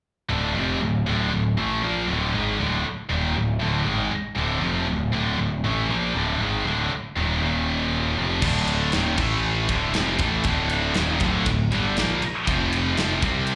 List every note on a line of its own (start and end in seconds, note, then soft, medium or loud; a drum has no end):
0.29 0.54 D1 medium
0.29 0.54 D2 medium
0.29 0.55 A2 medium
0.29 0.55 D3 loud
0.55 0.80 F1 medium
0.55 0.80 F2 medium
0.55 0.80 C3 medium
0.55 0.80 F3 medium
0.81 1.06 D1 medium
0.81 1.01 D2 medium
0.81 1.01 A2 medium
1.06 1.31 D1 medium
1.06 1.31 D2 medium
1.06 1.31 A2 medium
1.06 1.31 D3 medium
1.32 1.56 D1 medium
1.32 1.53 D2 medium
1.32 1.53 A2 medium
1.57 1.82 A1 medium
1.57 1.82 A2 medium
1.57 1.82 E3 medium
1.57 1.83 A3 loud
1.83 2.07 A#1 medium
1.83 2.08 A#2 medium
1.83 2.08 F3 medium
1.83 2.08 A#3 medium
2.08 2.32 D1 loud
2.08 2.33 D2 medium
2.08 2.33 A2 loud
2.08 2.33 D3 medium
2.34 2.57 G#1 medium
2.34 2.58 G#2 medium
2.34 2.59 D#3 loud
2.34 2.59 G#3 loud
2.59 2.83 D1 medium
2.59 2.84 D2 medium
2.59 2.84 A2 medium
2.59 2.84 D3 loud
2.85 muted distorted electric guitar stroke medium
2.85 muted picked electric bass stroke soft
3.09 3.34 D#1 loud
3.09 3.34 D#2 medium
3.09 3.35 A#2 medium
3.09 3.35 D#3 loud
3.36 3.59 D1 medium
3.36 3.56 D2 medium
3.36 3.56 A2 medium
3.61 3.84 D1 medium
3.61 3.86 D2 medium
3.61 3.86 A2 medium
3.61 3.86 D3 medium
3.86 4.10 G#1 medium
3.86 4.11 G#2 medium
3.86 4.11 D#3 medium
3.86 4.11 G#3 medium
4.12 muted picked electric bass stroke soft
4.12 muted distorted electric guitar stroke medium
4.36 4.59 D1 medium
4.36 4.62 D2 medium
4.36 4.62 A2 medium
4.36 4.62 D3 loud
4.60 4.85 F1 medium
4.60 4.87 F2 medium
4.60 4.88 C3 medium
4.64 4.88 F3 loud
4.88 5.11 D1 medium
4.88 5.09 D2 medium
4.88 5.09 A2 medium
5.13 5.37 D1 medium
5.13 5.38 D2 medium
5.13 5.38 A2 medium
5.13 5.38 D3 loud
5.38 5.62 D1 medium
5.38 5.59 D2 medium
5.38 5.59 A2 medium
5.64 5.88 A1 medium
5.64 5.88 A2 medium
5.64 5.88 E3 medium
5.64 5.89 A3 loud
5.89 6.13 A#1 medium
5.89 6.14 A#2 medium
5.89 6.14 F3 medium
5.89 6.14 A#3 medium
6.15 6.38 D1 medium
6.15 6.40 D2 medium
6.15 6.40 A2 loud
6.15 6.40 D3 medium
6.40 6.63 G#1 medium
6.40 6.65 G#2 medium
6.40 6.66 D#3 loud
6.40 6.66 G#3 loud
6.65 6.89 D1 medium
6.65 6.90 D2 medium
6.65 6.91 A2 medium
6.65 6.91 D3 medium
6.91 muted picked electric bass stroke soft
6.91 muted distorted electric guitar stroke medium
7.16 7.40 D#1 medium
7.16 7.40 D#2 medium
7.16 7.41 A#2 medium
7.16 7.41 D#3 medium
7.41 8.14 D#1 medium
7.41 8.16 D#2 medium
7.41 8.17 A#2 medium
7.41 8.17 D#3 medium
8.17 8.41 F1 medium
8.17 8.42 F2 medium
8.17 8.43 C3 medium
8.17 8.43 F3 loud
8.42 8.90 D1 loud
8.42 8.93 D2 medium
8.42 8.93 A2 loud
8.42 8.94 D3 loud
8.42 kick loud
8.42 crash loud
8.67 ride medium
8.92 9.17 D#1 medium
8.92 9.18 D#2 medium
8.92 9.18 A#2 loud
8.92 9.19 D#3 loud
8.92 snare loud
8.92 ride loud
9.18 9.65 A1 medium
9.18 9.69 A2 medium
9.18 9.69 E3 loud
9.18 9.69 A3 loud
9.18 kick loud
9.18 crash medium
9.69 9.93 D1 loud
9.69 9.94 D2 medium
9.69 9.95 A2 medium
9.69 9.95 D3 medium
9.69 kick loud
9.69 ride medium
9.94 10.19 F1 medium
9.94 10.19 F2 medium
9.94 10.19 C3 medium
9.94 10.20 F3 medium
9.94 snare loud
9.94 ride loud
10.19 10.43 A1 loud
10.19 10.44 A2 medium
10.19 10.45 E3 loud
10.19 10.44 A3 loud
10.19 kick loud
10.19 ride medium
10.44 10.92 D1 loud
10.44 10.95 D2 medium
10.44 10.95 A2 loud
10.44 10.96 D3 loud
10.44 kick loud
10.44 ride loud
10.70 ride medium
10.94 11.19 D#1 loud
10.94 11.21 D#2 medium
10.94 11.21 A#2 loud
10.94 11.21 D#3 loud
10.94 snare loud
10.94 ride medium
11.20 11.44 D1 loud
11.20 11.46 D2 medium
11.20 11.46 A2 loud
11.20 11.46 D3 loud
11.20 kick medium
11.20 ride medium
11.46 11.70 D1 medium
11.46 11.67 D2 medium
11.46 11.67 A2 medium
11.46 kick medium
11.46 ride loud
11.72 11.95 G1 medium
11.72 11.96 G2 medium
11.72 11.96 D3 medium
11.72 11.96 G3 medium
11.72 ride medium
11.97 12.20 A#1 medium
11.97 12.21 A#2 medium
11.97 12.22 F3 medium
11.97 12.22 A#3 loud
11.97 snare loud
11.97 ride medium
12.22 muted picked electric bass stroke soft
12.22 muted distorted electric guitar stroke medium
12.22 ride medium
12.47 12.94 F1 loud
12.47 12.96 F2 medium
12.47 12.96 C3 loud
12.47 12.97 F3 loud
12.47 kick loud
12.47 ride medium
12.73 ride medium
12.97 13.22 F1 medium
12.97 13.22 F2 medium
12.97 13.22 C3 loud
12.97 13.22 F3 loud
12.97 snare loud
12.97 ride loud
13.22 13.55 C2 loud
13.22 13.55 C3 medium
13.22 13.55 G3 loud
13.22 13.55 C4 loud
13.22 kick medium
13.22 ride medium
13.47 ride loud